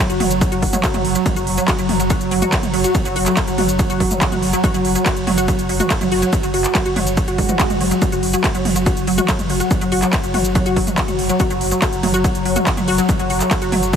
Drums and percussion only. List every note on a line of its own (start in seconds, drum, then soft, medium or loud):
0.10 closed hi-hat medium
0.10 shaker soft
0.20 mid tom loud
0.20 open hi-hat loud
0.31 closed hi-hat medium
0.31 shaker medium
0.41 kick loud
0.41 closed hi-hat medium
0.41 ride medium
0.41 shaker medium
0.52 closed hi-hat medium
0.52 shaker soft
0.62 kick medium
0.62 open hi-hat loud
0.73 closed hi-hat medium
0.73 mid tom medium
0.73 shaker medium
0.84 kick loud
0.84 clap loud
0.84 closed hi-hat medium
0.84 ride medium
0.84 shaker medium
0.94 closed hi-hat medium
0.94 mid tom medium
0.94 shaker soft
1.05 open hi-hat loud
1.15 closed hi-hat medium
1.15 shaker medium
1.26 kick loud
1.26 closed hi-hat medium
1.26 mid tom medium
1.26 ride medium
1.26 shaker medium
1.36 closed hi-hat medium
1.36 shaker soft
1.47 open hi-hat loud
1.58 closed hi-hat medium
1.58 shaker medium
1.68 kick loud
1.68 clap loud
1.68 closed hi-hat medium
1.68 ride medium
1.68 shaker medium
1.79 closed hi-hat medium
1.79 shaker soft
1.89 mid tom loud
1.89 open hi-hat loud
2.00 closed hi-hat medium
2.00 shaker medium
2.10 kick loud
2.10 closed hi-hat medium
2.10 ride medium
2.10 shaker medium
2.21 closed hi-hat soft
2.21 shaker soft
2.31 open hi-hat loud
2.42 closed hi-hat soft
2.42 mid tom medium
2.42 shaker medium
2.52 kick loud
2.52 clap loud
2.52 closed hi-hat medium
2.52 ride medium
2.52 shaker medium
2.63 closed hi-hat soft
2.63 mid tom medium
2.63 shaker soft
2.74 open hi-hat loud
2.84 closed hi-hat soft
2.84 shaker medium
2.95 kick loud
2.95 closed hi-hat medium
2.95 mid tom medium
2.95 ride medium
2.95 shaker medium
3.05 closed hi-hat medium
3.05 shaker soft
3.16 open hi-hat loud
3.26 clap soft
3.26 closed hi-hat medium
3.26 shaker medium
3.37 kick loud
3.37 clap loud
3.37 closed hi-hat medium
3.37 ride medium
3.37 shaker medium
3.48 closed hi-hat medium
3.48 shaker soft
3.58 mid tom medium
3.58 open hi-hat loud
3.69 closed hi-hat medium
3.69 shaker medium
3.79 kick loud
3.79 closed hi-hat medium
3.79 ride medium
3.79 shaker medium
3.90 closed hi-hat soft
3.90 shaker soft
4.00 kick medium
4.00 open hi-hat loud
4.11 closed hi-hat soft
4.11 mid tom medium
4.11 shaker medium
4.21 kick loud
4.21 clap loud
4.21 closed hi-hat medium
4.21 ride medium
4.21 shaker medium
4.32 closed hi-hat soft
4.32 mid tom medium
4.32 shaker soft
4.43 open hi-hat loud
4.53 closed hi-hat medium
4.53 shaker medium
4.64 kick loud
4.64 closed hi-hat medium
4.64 mid tom medium
4.64 ride medium
4.64 shaker medium
4.74 closed hi-hat medium
4.74 shaker soft
4.85 open hi-hat loud
4.95 closed hi-hat medium
4.95 shaker medium
5.06 kick loud
5.06 clap loud
5.06 closed hi-hat medium
5.06 ride medium
5.06 shaker medium
5.17 closed hi-hat medium
5.17 shaker soft
5.27 mid tom medium
5.27 open hi-hat loud
5.38 closed hi-hat medium
5.38 shaker medium
5.48 kick loud
5.48 closed hi-hat medium
5.48 ride medium
5.48 shaker medium
5.59 closed hi-hat medium
5.59 shaker soft
5.69 open hi-hat loud
5.80 closed hi-hat medium
5.80 mid tom medium
5.80 shaker medium
5.90 kick loud
5.90 clap loud
5.90 closed hi-hat medium
5.90 ride medium
5.90 shaker medium
6.01 closed hi-hat medium
6.01 mid tom medium
6.01 shaker soft
6.12 open hi-hat loud
6.22 closed hi-hat medium
6.22 shaker medium
6.33 kick loud
6.33 closed hi-hat medium
6.33 mid tom medium
6.33 ride medium
6.33 shaker medium
6.43 closed hi-hat medium
6.43 shaker soft
6.54 open hi-hat loud
6.64 clap soft
6.64 closed hi-hat medium
6.64 shaker medium
6.75 kick loud
6.75 clap loud
6.75 closed hi-hat medium
6.75 ride medium
6.75 shaker medium
6.86 closed hi-hat medium
6.86 shaker soft
6.96 mid tom medium
6.96 open hi-hat loud
7.07 closed hi-hat medium
7.07 shaker medium
7.17 kick loud
7.17 closed hi-hat medium
7.17 ride medium
7.17 shaker medium
7.28 closed hi-hat medium
7.28 shaker soft
7.38 kick medium
7.38 open hi-hat loud
7.49 closed hi-hat medium
7.49 mid tom medium
7.49 shaker medium
7.59 kick loud
7.59 clap loud
7.59 closed hi-hat medium
7.59 ride medium
7.59 shaker medium
7.70 closed hi-hat medium
7.70 mid tom medium
7.70 shaker soft
7.81 open hi-hat loud
7.91 closed hi-hat medium
7.91 shaker medium
8.02 kick loud
8.02 closed hi-hat medium
8.02 mid tom medium
8.02 ride medium
8.02 shaker medium
8.12 closed hi-hat medium
8.12 shaker soft
8.23 open hi-hat loud
8.33 closed hi-hat medium
8.33 shaker medium
8.44 kick loud
8.44 clap loud
8.44 closed hi-hat medium
8.44 ride medium
8.44 shaker medium
8.55 closed hi-hat medium
8.55 shaker soft
8.65 mid tom medium
8.65 open hi-hat loud
8.76 closed hi-hat medium
8.76 shaker medium
8.86 kick loud
8.86 closed hi-hat medium
8.86 ride medium
8.86 shaker soft
8.97 closed hi-hat medium
8.97 shaker soft
9.07 open hi-hat loud
9.18 closed hi-hat medium
9.18 mid tom medium
9.18 shaker medium
9.28 kick loud
9.28 clap loud
9.28 closed hi-hat medium
9.28 ride medium
9.28 shaker medium
9.39 closed hi-hat medium
9.39 mid tom medium
9.39 shaker soft
9.50 open hi-hat loud
9.60 closed hi-hat medium
9.60 shaker medium
9.71 kick loud
9.71 closed hi-hat medium
9.71 mid tom medium
9.71 ride medium
9.71 shaker medium
9.81 closed hi-hat medium
9.81 shaker soft
9.92 open hi-hat loud
10.02 clap soft
10.02 closed hi-hat medium
10.02 shaker medium
10.13 kick loud
10.13 clap loud
10.13 closed hi-hat medium
10.13 ride medium
10.13 shaker medium
10.23 closed hi-hat medium
10.23 shaker soft
10.34 mid tom medium
10.34 open hi-hat loud
10.45 closed hi-hat medium
10.45 shaker medium
10.55 kick loud
10.55 closed hi-hat medium
10.55 ride medium
10.55 shaker medium
10.66 closed hi-hat medium
10.66 shaker soft
10.76 kick medium
10.76 open hi-hat loud
10.87 closed hi-hat medium
10.87 mid tom medium
10.87 shaker medium
10.98 kick loud
10.98 clap loud
10.98 closed hi-hat medium
10.98 ride medium
10.98 shaker medium
11.08 closed hi-hat medium
11.08 mid tom medium
11.08 shaker soft
11.19 open hi-hat loud
11.29 closed hi-hat medium
11.29 shaker medium
11.40 kick loud
11.40 closed hi-hat medium
11.40 mid tom medium
11.40 ride medium
11.40 shaker medium
11.50 closed hi-hat medium
11.50 shaker soft
11.61 open hi-hat loud
11.72 closed hi-hat medium
11.72 shaker medium
11.82 kick loud
11.82 clap loud
11.82 closed hi-hat medium
11.82 ride medium
11.82 shaker medium
11.93 closed hi-hat medium
11.93 shaker soft
12.03 mid tom loud
12.03 open hi-hat loud
12.14 closed hi-hat medium
12.14 shaker medium
12.24 kick loud
12.24 closed hi-hat medium
12.24 ride medium
12.24 shaker medium
12.35 closed hi-hat medium
12.35 shaker soft
12.45 open hi-hat loud
12.56 closed hi-hat medium
12.56 mid tom medium
12.56 shaker medium
12.67 kick loud
12.67 clap loud
12.67 closed hi-hat medium
12.67 ride medium
12.67 shaker medium
12.77 closed hi-hat medium
12.77 mid tom medium
12.77 shaker soft
12.88 open hi-hat loud
12.98 closed hi-hat medium
12.98 shaker medium
13.09 kick loud
13.09 closed hi-hat medium
13.09 mid tom medium
13.09 ride medium
13.09 shaker medium
13.19 closed hi-hat medium
13.19 shaker soft
13.30 open hi-hat loud
13.41 clap soft
13.41 closed hi-hat medium
13.41 shaker medium
13.51 kick loud
13.51 clap loud
13.51 closed hi-hat medium
13.51 ride medium
13.51 shaker medium
13.62 closed hi-hat medium
13.62 shaker soft
13.72 mid tom loud
13.72 open hi-hat loud
13.83 closed hi-hat medium
13.83 shaker medium
13.93 kick loud
13.93 closed hi-hat medium
13.93 ride medium
13.93 shaker medium